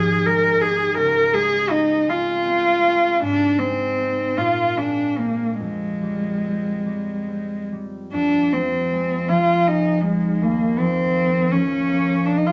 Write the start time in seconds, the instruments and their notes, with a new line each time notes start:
Already playing: harp G#2 D#4 G4, cello G#4
0.25 harp G#3, cello A#4
0.61 harp D#4 G4, cello G#4
0.97 harp C#2, cello A#4
1.33 harp G#3, cello G#4
1.69 harp C4, cello D#4
2.07 harp G#3, cello F4
2.45 harp C4
2.83 harp C#4
3.21 harp G#2, cello D4
3.58 harp G#3, cello C4
3.97 harp C4 D#4
4.37 harp A#2, cello F4
4.77 harp G#3, cello D4
5.18 cello A#3, harp C4 D4
5.60 harp F2, cello G#3
6.02 harp G3
6.44 harp C4
6.86 harp G3
7.28 harp C4
7.72 harp G3
8.13 harp F2, cello D4
8.53 harp F3, cello C4
8.92 harp G#3
9.29 harp F3, cello F4
9.67 harp G#3, cello D#4
10.04 cello G#3, harp D#4
10.41 harp D#2, cello A#3
10.79 harp F3, cello C4
11.16 harp A#3
11.52 harp F3, cello C#4
11.89 harp A#3
12.25 cello D4, harp D#4
12.37 cello D#4
12.47 cello F4